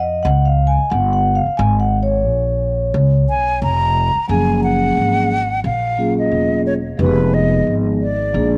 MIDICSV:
0, 0, Header, 1, 5, 480
1, 0, Start_track
1, 0, Key_signature, 6, "major"
1, 0, Tempo, 674157
1, 1134, Time_signature, 4, 2, 24, 8
1, 6108, End_track
2, 0, Start_track
2, 0, Title_t, "Flute"
2, 0, Program_c, 0, 73
2, 2347, Note_on_c, 0, 80, 104
2, 2564, Note_off_c, 0, 80, 0
2, 2585, Note_on_c, 0, 82, 105
2, 3031, Note_off_c, 0, 82, 0
2, 3062, Note_on_c, 0, 80, 94
2, 3282, Note_off_c, 0, 80, 0
2, 3300, Note_on_c, 0, 78, 109
2, 3989, Note_off_c, 0, 78, 0
2, 4023, Note_on_c, 0, 77, 98
2, 4374, Note_off_c, 0, 77, 0
2, 4406, Note_on_c, 0, 75, 81
2, 4716, Note_off_c, 0, 75, 0
2, 4745, Note_on_c, 0, 73, 94
2, 4798, Note_off_c, 0, 73, 0
2, 4985, Note_on_c, 0, 71, 86
2, 5226, Note_on_c, 0, 75, 86
2, 5237, Note_off_c, 0, 71, 0
2, 5516, Note_off_c, 0, 75, 0
2, 5705, Note_on_c, 0, 74, 77
2, 6108, Note_off_c, 0, 74, 0
2, 6108, End_track
3, 0, Start_track
3, 0, Title_t, "Vibraphone"
3, 0, Program_c, 1, 11
3, 0, Note_on_c, 1, 75, 89
3, 161, Note_on_c, 1, 78, 91
3, 172, Note_off_c, 1, 75, 0
3, 316, Note_off_c, 1, 78, 0
3, 322, Note_on_c, 1, 77, 87
3, 478, Note_on_c, 1, 80, 87
3, 493, Note_off_c, 1, 77, 0
3, 642, Note_on_c, 1, 78, 99
3, 651, Note_off_c, 1, 80, 0
3, 795, Note_off_c, 1, 78, 0
3, 804, Note_on_c, 1, 78, 90
3, 963, Note_on_c, 1, 77, 90
3, 974, Note_off_c, 1, 78, 0
3, 1119, Note_on_c, 1, 80, 109
3, 1134, Note_off_c, 1, 77, 0
3, 1195, Note_off_c, 1, 80, 0
3, 1280, Note_on_c, 1, 78, 93
3, 1355, Note_off_c, 1, 78, 0
3, 1442, Note_on_c, 1, 73, 83
3, 2620, Note_off_c, 1, 73, 0
3, 3045, Note_on_c, 1, 54, 72
3, 3049, Note_on_c, 1, 58, 65
3, 3053, Note_on_c, 1, 61, 64
3, 3057, Note_on_c, 1, 53, 67
3, 3061, Note_on_c, 1, 68, 76
3, 3749, Note_off_c, 1, 54, 0
3, 3751, Note_off_c, 1, 58, 0
3, 3753, Note_off_c, 1, 61, 0
3, 3756, Note_off_c, 1, 53, 0
3, 3758, Note_off_c, 1, 68, 0
3, 4247, Note_on_c, 1, 54, 60
3, 4251, Note_on_c, 1, 58, 58
3, 4255, Note_on_c, 1, 61, 62
3, 4260, Note_on_c, 1, 65, 60
3, 4265, Note_on_c, 1, 68, 72
3, 4780, Note_off_c, 1, 54, 0
3, 4782, Note_off_c, 1, 58, 0
3, 4784, Note_off_c, 1, 61, 0
3, 4786, Note_off_c, 1, 65, 0
3, 4789, Note_off_c, 1, 68, 0
3, 4966, Note_on_c, 1, 53, 71
3, 4971, Note_on_c, 1, 56, 59
3, 4975, Note_on_c, 1, 59, 57
3, 4978, Note_on_c, 1, 63, 63
3, 4981, Note_on_c, 1, 67, 63
3, 5030, Note_on_c, 1, 68, 77
3, 5032, Note_off_c, 1, 67, 0
3, 5670, Note_off_c, 1, 53, 0
3, 5672, Note_off_c, 1, 56, 0
3, 5675, Note_off_c, 1, 59, 0
3, 5676, Note_off_c, 1, 63, 0
3, 5702, Note_off_c, 1, 68, 0
3, 5925, Note_on_c, 1, 53, 72
3, 5929, Note_on_c, 1, 56, 63
3, 5935, Note_on_c, 1, 58, 72
3, 5940, Note_on_c, 1, 62, 65
3, 5943, Note_on_c, 1, 68, 84
3, 6108, Note_off_c, 1, 53, 0
3, 6108, Note_off_c, 1, 56, 0
3, 6108, Note_off_c, 1, 58, 0
3, 6108, Note_off_c, 1, 62, 0
3, 6108, Note_off_c, 1, 68, 0
3, 6108, End_track
4, 0, Start_track
4, 0, Title_t, "Upright bass"
4, 0, Program_c, 2, 32
4, 0, Note_on_c, 2, 41, 80
4, 151, Note_off_c, 2, 41, 0
4, 176, Note_on_c, 2, 37, 107
4, 538, Note_off_c, 2, 37, 0
4, 651, Note_on_c, 2, 31, 110
4, 1015, Note_off_c, 2, 31, 0
4, 1131, Note_on_c, 2, 32, 121
4, 1612, Note_off_c, 2, 32, 0
4, 1612, Note_on_c, 2, 34, 85
4, 2069, Note_off_c, 2, 34, 0
4, 2095, Note_on_c, 2, 37, 108
4, 2335, Note_off_c, 2, 37, 0
4, 2335, Note_on_c, 2, 35, 85
4, 2563, Note_off_c, 2, 35, 0
4, 2577, Note_on_c, 2, 29, 95
4, 2938, Note_off_c, 2, 29, 0
4, 3056, Note_on_c, 2, 30, 102
4, 3511, Note_off_c, 2, 30, 0
4, 3537, Note_on_c, 2, 32, 77
4, 3992, Note_off_c, 2, 32, 0
4, 4016, Note_on_c, 2, 34, 96
4, 4471, Note_off_c, 2, 34, 0
4, 4497, Note_on_c, 2, 28, 84
4, 4952, Note_off_c, 2, 28, 0
4, 4977, Note_on_c, 2, 29, 103
4, 5432, Note_off_c, 2, 29, 0
4, 5459, Note_on_c, 2, 32, 82
4, 5913, Note_off_c, 2, 32, 0
4, 5939, Note_on_c, 2, 34, 92
4, 6108, Note_off_c, 2, 34, 0
4, 6108, End_track
5, 0, Start_track
5, 0, Title_t, "Muted upright bass strokes"
5, 556, Note_on_c, 9, 29, 49
5, 627, Note_off_c, 9, 29, 0
5, 1038, Note_on_c, 9, 29, 51
5, 1109, Note_off_c, 9, 29, 0
5, 2959, Note_on_c, 9, 29, 51
5, 3030, Note_off_c, 9, 29, 0
5, 6108, End_track
0, 0, End_of_file